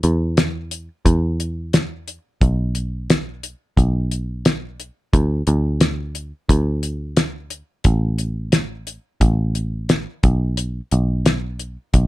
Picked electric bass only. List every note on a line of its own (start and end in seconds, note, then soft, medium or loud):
0.04 0.88 E2 medium
1.05 2.17 E2 medium
2.41 3.53 B1 medium
3.77 4.89 B1 medium
5.13 5.41 D2 medium
5.48 6.31 D2 medium
6.49 7.61 D2 medium
7.85 8.97 A1 medium
9.21 10.05 A1 medium
10.24 10.80 B1 medium
10.92 11.76 B1 medium
11.94 12.07 B1 medium